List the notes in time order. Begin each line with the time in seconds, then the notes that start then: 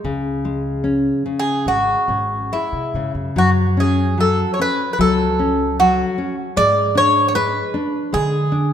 0.04 C#2 C#3
0.45 G#3
0.84 C#4
1.26 C#3
1.39 G#4
1.66 G#1 G#3 F#4
2.08 G#1 C#4
2.52 G#3 E4
2.72 C3
2.94 G#2 C#3
3.14 F#2
3.36 F#2 F#3 F#4
3.77 C#4 G#4
4.18 F#3 A4
4.54 C#5
4.59 C#4 B4
4.93 B4
4.99 C#2 F#3 A4
5.39 C#4
5.80 F#3 F#4
6.18 C#4
6.56 G#2 G#3 D5
6.95 D4 C#5
7.28 C#5
7.35 G#3 B4
7.74 D4
8.13 D3 G#3 G#4
8.52 D4